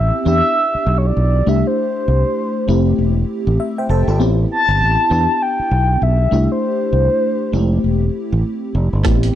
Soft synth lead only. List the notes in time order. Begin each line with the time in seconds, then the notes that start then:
Already playing: E5
0.28 E5
0.98 C#5
1.06 D5
1.49 E5
1.67 C5
4.52 A5
5.42 G5
6.03 E5
6.52 C5